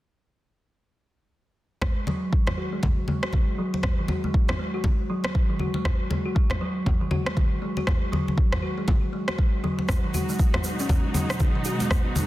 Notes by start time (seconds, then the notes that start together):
1.82 G#3, kick, cross-stick, low conga
2.07 F#3, muted conga, high conga
2.33 kick
2.47 D#3, cross-stick, muted conga, low conga
2.58 F#4
2.72 G#3
2.83 kick, muted conga, high conga, low conga
3.08 G#3, high conga
3.23 F#4, cross-stick, muted conga
3.33 G#3, kick, high conga
3.58 F#3
3.74 muted conga
3.83 kick, cross-stick, low conga
3.99 D#3
4.08 F#4, muted conga, high conga
4.24 G#3, high conga
4.34 kick
4.48 cross-stick, muted conga, low conga
4.59 G#3
4.74 F#4
4.84 G#3, kick, muted conga, high conga, low conga
5.10 F#3
5.24 cross-stick, muted conga
5.35 kick
5.50 D#3
5.59 F#4, high conga
5.74 G#3, muted conga
5.85 kick, cross-stick, low conga
6.10 G#3, muted conga, high conga
6.26 F#4
6.35 G#3, kick
6.50 cross-stick, muted conga, low conga
6.61 F#3
6.86 kick, muted conga, high conga, low conga
7.01 D#3
7.11 F#4, high conga
7.26 G#3, cross-stick, muted conga
7.37 kick, high conga
7.62 G#3
7.77 F#4, muted conga
7.87 G#3, kick, cross-stick, low conga
8.12 F#3, muted conga, high conga
8.28 high conga
8.38 kick
8.52 D#3, cross-stick, muted conga, low conga
8.62 F#4
8.78 G#3
8.88 kick, muted conga, high conga, low conga
9.13 G#3
9.28 F#4, cross-stick, muted conga
9.38 G#3, kick
9.64 F#3, high conga
9.79 muted conga
9.89 B2 G#3 D#4 F#4, kick, cross-stick, low conga, shaker
10.04 D#3
10.14 F#4, muted conga, high conga, shaker
10.29 G#3, shaker
10.39 kick, shaker
10.54 cross-stick, muted conga, low conga
10.64 G#3, shaker
10.79 C#4, shaker
10.89 G#3, kick, muted conga, high conga, low conga, shaker
11.14 F#3, high conga, shaker
11.30 cross-stick, muted conga, shaker
11.40 kick, high conga, shaker
11.55 D#3
11.65 F#4, shaker
11.80 G#3, muted conga, shaker
11.90 kick, cross-stick, low conga, shaker
12.16 G#3, muted conga, high conga, shaker